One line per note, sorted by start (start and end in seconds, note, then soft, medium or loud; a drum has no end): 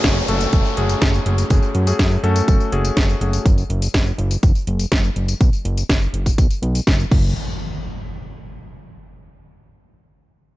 0.00 0.26 A3 medium
0.00 0.26 C#4 medium
0.00 0.26 F#4 medium
0.00 0.26 G#4 medium
0.00 snare loud
0.00 closed hi-hat medium
0.00 tambourine soft
0.00 downlifter medium
0.04 0.23 F#1 medium
0.04 kick loud
0.16 tambourine soft
0.28 0.47 F#1 loud
0.28 0.75 A3 medium
0.28 0.75 C#4 medium
0.28 0.75 F#4 medium
0.28 0.75 A4 loud
0.28 closed hi-hat medium
0.41 closed hi-hat medium
0.41 tambourine medium
0.53 0.62 F#1 medium
0.53 kick loud
0.53 closed hi-hat medium
0.53 tambourine soft
0.65 tambourine soft
0.77 0.96 F#1 medium
0.77 1.23 A3 medium
0.77 1.23 C#4 medium
0.77 1.23 F#4 medium
0.77 1.23 G#4 loud
0.77 closed hi-hat medium
0.89 closed hi-hat medium
0.89 tambourine medium
1.02 1.20 F#1 medium
1.02 kick loud
1.02 snare loud
1.02 closed hi-hat medium
1.02 tambourine soft
1.14 tambourine soft
1.26 1.44 F#1 medium
1.26 1.48 A3 medium
1.26 1.48 C#4 medium
1.26 1.47 F#4 medium
1.26 1.47 G#4 medium
1.26 closed hi-hat medium
1.38 closed hi-hat medium
1.38 tambourine medium
1.50 1.60 F#1 medium
1.50 1.84 A3 medium
1.50 1.84 C#4 medium
1.50 1.84 F#4 medium
1.50 1.84 G#4 medium
1.50 kick loud
1.50 closed hi-hat medium
1.50 tambourine soft
1.62 tambourine soft
1.75 1.93 F#2 medium
1.75 closed hi-hat medium
1.87 2.21 A3 medium
1.87 2.21 C#4 medium
1.87 2.21 F#4 medium
1.87 2.21 G#4 loud
1.87 closed hi-hat medium
1.87 tambourine medium
1.99 2.18 F#2 medium
1.99 kick loud
1.99 snare loud
1.99 closed hi-hat medium
1.99 tambourine soft
2.11 tambourine soft
2.23 2.42 F#2 medium
2.23 2.70 A3 medium
2.23 2.70 C#4 medium
2.23 2.70 F#4 medium
2.23 2.70 A4 loud
2.23 closed hi-hat medium
2.36 closed hi-hat medium
2.36 tambourine medium
2.48 2.57 F#1 medium
2.48 kick loud
2.48 closed hi-hat medium
2.48 tambourine soft
2.60 tambourine soft
2.72 2.91 F#1 loud
2.72 3.18 A3 medium
2.72 3.18 C#4 medium
2.72 3.18 F#4 medium
2.72 3.18 G#4 loud
2.72 closed hi-hat medium
2.85 closed hi-hat medium
2.85 tambourine medium
2.97 3.15 F#1 medium
2.97 kick loud
2.97 snare loud
2.97 closed hi-hat medium
2.97 tambourine soft
3.09 tambourine soft
3.21 3.40 F#1 medium
3.21 3.43 A3 medium
3.21 3.43 C#4 medium
3.21 3.43 F#4 medium
3.21 3.43 G#4 medium
3.21 closed hi-hat medium
3.33 closed hi-hat medium
3.33 tambourine medium
3.46 3.64 F#1 loud
3.46 kick loud
3.46 closed hi-hat medium
3.46 tambourine soft
3.58 tambourine soft
3.70 3.88 F#1 medium
3.70 closed hi-hat medium
3.82 closed hi-hat medium
3.82 tambourine medium
3.94 4.13 F#1 medium
3.94 kick loud
3.94 snare loud
3.94 closed hi-hat medium
3.94 tambourine soft
4.06 tambourine soft
4.18 4.37 F#1 loud
4.18 closed hi-hat medium
4.31 closed hi-hat soft
4.31 tambourine medium
4.43 4.52 F#1 medium
4.43 kick loud
4.43 closed hi-hat medium
4.43 tambourine soft
4.55 tambourine soft
4.67 4.86 F#1 medium
4.67 closed hi-hat medium
4.79 closed hi-hat medium
4.79 tambourine medium
4.92 5.10 F#1 loud
4.92 kick loud
4.92 snare loud
4.92 closed hi-hat medium
4.92 tambourine soft
5.04 tambourine soft
5.16 5.35 F#1 medium
5.16 closed hi-hat medium
5.28 closed hi-hat soft
5.28 tambourine medium
5.41 5.50 B1 medium
5.41 kick loud
5.41 closed hi-hat medium
5.41 tambourine medium
5.53 tambourine soft
5.65 5.83 F#1 medium
5.65 closed hi-hat medium
5.77 closed hi-hat medium
5.77 tambourine medium
5.89 6.08 F#1 medium
5.89 kick loud
5.89 snare loud
5.89 closed hi-hat medium
5.89 tambourine medium
6.02 tambourine soft
6.14 6.32 F#1 medium
6.14 closed hi-hat medium
6.26 kick medium
6.26 closed hi-hat soft
6.26 tambourine medium
6.38 6.47 B1 medium
6.38 kick loud
6.38 closed hi-hat medium
6.38 tambourine soft
6.51 closed hi-hat soft
6.51 tambourine soft
6.62 6.81 B1 loud
6.62 closed hi-hat medium
6.75 closed hi-hat soft
6.75 tambourine medium
6.87 7.05 F#1 medium
6.87 kick loud
6.87 snare loud
6.87 closed hi-hat medium
6.87 tambourine soft
6.99 tambourine soft
7.11 7.34 F#1 medium
7.11 kick loud
7.11 crash medium
7.11 impact medium